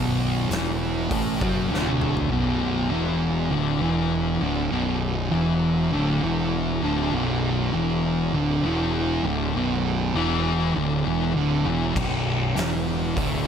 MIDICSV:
0, 0, Header, 1, 4, 480
1, 0, Start_track
1, 0, Key_signature, 2, "minor"
1, 0, Tempo, 603015
1, 1840, Time_signature, 4, 2, 24, 8
1, 10724, End_track
2, 0, Start_track
2, 0, Title_t, "Distorted electric guitar"
2, 0, Program_c, 0, 30
2, 0, Note_on_c, 0, 35, 104
2, 0, Note_on_c, 0, 47, 105
2, 390, Note_off_c, 0, 35, 0
2, 393, Note_off_c, 0, 47, 0
2, 399, Note_on_c, 0, 40, 87
2, 404, Note_on_c, 0, 52, 105
2, 872, Note_off_c, 0, 40, 0
2, 875, Note_off_c, 0, 52, 0
2, 877, Note_on_c, 0, 45, 97
2, 886, Note_on_c, 0, 57, 118
2, 1111, Note_off_c, 0, 45, 0
2, 1116, Note_off_c, 0, 57, 0
2, 1120, Note_on_c, 0, 42, 83
2, 1129, Note_on_c, 0, 54, 97
2, 1352, Note_off_c, 0, 42, 0
2, 1356, Note_on_c, 0, 38, 93
2, 1357, Note_off_c, 0, 54, 0
2, 1364, Note_on_c, 0, 50, 99
2, 1830, Note_off_c, 0, 38, 0
2, 1834, Note_off_c, 0, 50, 0
2, 1836, Note_on_c, 0, 35, 101
2, 1844, Note_on_c, 0, 47, 103
2, 2310, Note_off_c, 0, 35, 0
2, 2314, Note_off_c, 0, 47, 0
2, 2316, Note_on_c, 0, 40, 98
2, 2324, Note_on_c, 0, 52, 95
2, 2789, Note_off_c, 0, 40, 0
2, 2794, Note_off_c, 0, 52, 0
2, 2797, Note_on_c, 0, 38, 101
2, 2803, Note_on_c, 0, 50, 103
2, 3030, Note_off_c, 0, 38, 0
2, 3033, Note_off_c, 0, 50, 0
2, 3039, Note_on_c, 0, 40, 100
2, 3044, Note_on_c, 0, 52, 100
2, 3510, Note_off_c, 0, 40, 0
2, 3513, Note_off_c, 0, 52, 0
2, 3513, Note_on_c, 0, 38, 92
2, 3523, Note_on_c, 0, 50, 98
2, 3748, Note_off_c, 0, 38, 0
2, 3753, Note_off_c, 0, 50, 0
2, 3753, Note_on_c, 0, 35, 97
2, 3759, Note_on_c, 0, 47, 127
2, 4227, Note_off_c, 0, 35, 0
2, 4231, Note_off_c, 0, 47, 0
2, 4236, Note_on_c, 0, 40, 90
2, 4241, Note_on_c, 0, 52, 101
2, 4709, Note_off_c, 0, 40, 0
2, 4712, Note_off_c, 0, 52, 0
2, 4721, Note_on_c, 0, 38, 102
2, 4725, Note_on_c, 0, 50, 112
2, 4952, Note_off_c, 0, 38, 0
2, 4953, Note_off_c, 0, 50, 0
2, 4961, Note_on_c, 0, 40, 106
2, 4965, Note_on_c, 0, 52, 119
2, 5431, Note_off_c, 0, 40, 0
2, 5433, Note_off_c, 0, 52, 0
2, 5441, Note_on_c, 0, 38, 89
2, 5444, Note_on_c, 0, 50, 100
2, 5671, Note_off_c, 0, 38, 0
2, 5673, Note_off_c, 0, 50, 0
2, 5686, Note_on_c, 0, 35, 111
2, 5691, Note_on_c, 0, 47, 116
2, 6154, Note_off_c, 0, 35, 0
2, 6156, Note_off_c, 0, 47, 0
2, 6160, Note_on_c, 0, 40, 94
2, 6170, Note_on_c, 0, 52, 112
2, 6631, Note_off_c, 0, 40, 0
2, 6636, Note_off_c, 0, 52, 0
2, 6641, Note_on_c, 0, 38, 107
2, 6646, Note_on_c, 0, 50, 127
2, 6871, Note_off_c, 0, 38, 0
2, 6874, Note_off_c, 0, 50, 0
2, 6882, Note_on_c, 0, 40, 97
2, 6889, Note_on_c, 0, 52, 100
2, 7352, Note_off_c, 0, 40, 0
2, 7355, Note_off_c, 0, 52, 0
2, 7357, Note_on_c, 0, 38, 94
2, 7363, Note_on_c, 0, 50, 101
2, 7589, Note_off_c, 0, 38, 0
2, 7593, Note_off_c, 0, 50, 0
2, 7603, Note_on_c, 0, 35, 104
2, 7610, Note_on_c, 0, 47, 119
2, 8082, Note_off_c, 0, 35, 0
2, 8082, Note_on_c, 0, 40, 92
2, 8089, Note_off_c, 0, 47, 0
2, 8089, Note_on_c, 0, 52, 99
2, 8550, Note_off_c, 0, 40, 0
2, 8553, Note_on_c, 0, 38, 94
2, 8556, Note_off_c, 0, 52, 0
2, 8559, Note_on_c, 0, 50, 121
2, 8788, Note_off_c, 0, 38, 0
2, 8791, Note_off_c, 0, 50, 0
2, 8792, Note_on_c, 0, 40, 90
2, 8799, Note_on_c, 0, 52, 110
2, 9028, Note_off_c, 0, 40, 0
2, 9031, Note_off_c, 0, 52, 0
2, 9031, Note_on_c, 0, 38, 91
2, 9036, Note_on_c, 0, 50, 104
2, 9267, Note_off_c, 0, 38, 0
2, 9270, Note_off_c, 0, 50, 0
2, 9275, Note_on_c, 0, 40, 95
2, 9276, Note_on_c, 0, 52, 93
2, 9509, Note_off_c, 0, 40, 0
2, 9510, Note_off_c, 0, 52, 0
2, 9514, Note_on_c, 0, 35, 103
2, 9520, Note_on_c, 0, 47, 127
2, 9989, Note_off_c, 0, 35, 0
2, 9992, Note_off_c, 0, 47, 0
2, 9995, Note_on_c, 0, 40, 96
2, 9998, Note_on_c, 0, 52, 100
2, 10470, Note_off_c, 0, 40, 0
2, 10472, Note_off_c, 0, 52, 0
2, 10474, Note_on_c, 0, 38, 93
2, 10478, Note_on_c, 0, 50, 101
2, 10709, Note_off_c, 0, 38, 0
2, 10712, Note_off_c, 0, 50, 0
2, 10724, End_track
3, 0, Start_track
3, 0, Title_t, "Picked electric bass"
3, 0, Program_c, 1, 34
3, 0, Note_on_c, 1, 23, 102
3, 369, Note_off_c, 1, 23, 0
3, 391, Note_on_c, 1, 28, 98
3, 844, Note_off_c, 1, 28, 0
3, 885, Note_on_c, 1, 33, 101
3, 1106, Note_off_c, 1, 33, 0
3, 1124, Note_on_c, 1, 30, 85
3, 1345, Note_off_c, 1, 30, 0
3, 1360, Note_on_c, 1, 26, 87
3, 1807, Note_off_c, 1, 26, 0
3, 1836, Note_on_c, 1, 23, 105
3, 2285, Note_off_c, 1, 23, 0
3, 2309, Note_on_c, 1, 28, 92
3, 2761, Note_off_c, 1, 28, 0
3, 2792, Note_on_c, 1, 26, 101
3, 3018, Note_off_c, 1, 26, 0
3, 3021, Note_on_c, 1, 28, 89
3, 3477, Note_off_c, 1, 28, 0
3, 3510, Note_on_c, 1, 26, 93
3, 3736, Note_off_c, 1, 26, 0
3, 3750, Note_on_c, 1, 23, 96
3, 4201, Note_off_c, 1, 23, 0
3, 4237, Note_on_c, 1, 28, 92
3, 4685, Note_off_c, 1, 28, 0
3, 4719, Note_on_c, 1, 26, 108
3, 4941, Note_off_c, 1, 26, 0
3, 4959, Note_on_c, 1, 28, 91
3, 5405, Note_off_c, 1, 28, 0
3, 5434, Note_on_c, 1, 26, 101
3, 5658, Note_off_c, 1, 26, 0
3, 5667, Note_on_c, 1, 23, 107
3, 6120, Note_off_c, 1, 23, 0
3, 6156, Note_on_c, 1, 28, 94
3, 6604, Note_off_c, 1, 28, 0
3, 6629, Note_on_c, 1, 26, 102
3, 6855, Note_off_c, 1, 26, 0
3, 6871, Note_on_c, 1, 28, 90
3, 7322, Note_off_c, 1, 28, 0
3, 7345, Note_on_c, 1, 26, 86
3, 7574, Note_off_c, 1, 26, 0
3, 7598, Note_on_c, 1, 23, 112
3, 8045, Note_off_c, 1, 23, 0
3, 8076, Note_on_c, 1, 28, 94
3, 8525, Note_off_c, 1, 28, 0
3, 8563, Note_on_c, 1, 26, 92
3, 8784, Note_off_c, 1, 26, 0
3, 8802, Note_on_c, 1, 28, 92
3, 9023, Note_off_c, 1, 28, 0
3, 9042, Note_on_c, 1, 26, 86
3, 9263, Note_off_c, 1, 26, 0
3, 9278, Note_on_c, 1, 28, 92
3, 9501, Note_off_c, 1, 28, 0
3, 9516, Note_on_c, 1, 23, 100
3, 9966, Note_off_c, 1, 23, 0
3, 9997, Note_on_c, 1, 28, 101
3, 10446, Note_off_c, 1, 28, 0
3, 10482, Note_on_c, 1, 26, 100
3, 10704, Note_off_c, 1, 26, 0
3, 10724, End_track
4, 0, Start_track
4, 0, Title_t, "Drums"
4, 405, Note_on_c, 9, 46, 61
4, 425, Note_on_c, 9, 38, 122
4, 484, Note_off_c, 9, 46, 0
4, 505, Note_off_c, 9, 38, 0
4, 883, Note_on_c, 9, 36, 110
4, 883, Note_on_c, 9, 46, 68
4, 962, Note_off_c, 9, 46, 0
4, 963, Note_off_c, 9, 36, 0
4, 1125, Note_on_c, 9, 36, 109
4, 1205, Note_off_c, 9, 36, 0
4, 1387, Note_on_c, 9, 38, 64
4, 1467, Note_off_c, 9, 38, 0
4, 1485, Note_on_c, 9, 48, 73
4, 1565, Note_off_c, 9, 48, 0
4, 1603, Note_on_c, 9, 45, 87
4, 1683, Note_off_c, 9, 45, 0
4, 1726, Note_on_c, 9, 43, 97
4, 1805, Note_off_c, 9, 43, 0
4, 9521, Note_on_c, 9, 36, 102
4, 9522, Note_on_c, 9, 49, 107
4, 9601, Note_off_c, 9, 36, 0
4, 9602, Note_off_c, 9, 49, 0
4, 10002, Note_on_c, 9, 46, 69
4, 10022, Note_on_c, 9, 38, 114
4, 10081, Note_off_c, 9, 46, 0
4, 10102, Note_off_c, 9, 38, 0
4, 10482, Note_on_c, 9, 36, 110
4, 10484, Note_on_c, 9, 46, 66
4, 10561, Note_off_c, 9, 36, 0
4, 10564, Note_off_c, 9, 46, 0
4, 10724, End_track
0, 0, End_of_file